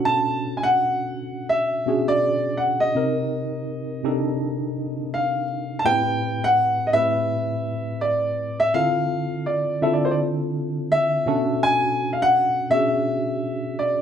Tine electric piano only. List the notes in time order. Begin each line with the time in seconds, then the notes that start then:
Already playing: B2 C#4 D4 F#4 A4
1.86 B2 C#4 D4 F#4 G#4
2.95 C3 C4 D#4 G4 A#4
4.04 C3 D4 D#4 G4 A4
5.85 A2 B3 E4 G4 B4
5.91 C4
6.93 A2 C4 E4 G4 B4
8.74 D3 C4 E4 F4 A4
9.82 D3 C4 E4 F4 A4
11.26 B2 C#4 D4 F#4 A4
12.70 B2 C#4 D4 F#4 G#4